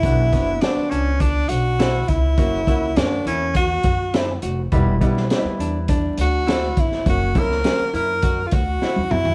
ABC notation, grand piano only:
X:1
M:4/4
L:1/8
Q:1/4=102
K:Bm
V:1 name="Grand piano"
[B,DF] [B,DF] [B,DF]3 z3 | [^A,CF] [A,CF] [A,C^EF]3 z3 | [G,B,E] [G,B,E] [G,B,^DE]3 z3 | [F,^A,C] [F,A,C] [F,A,C]3 z3 |]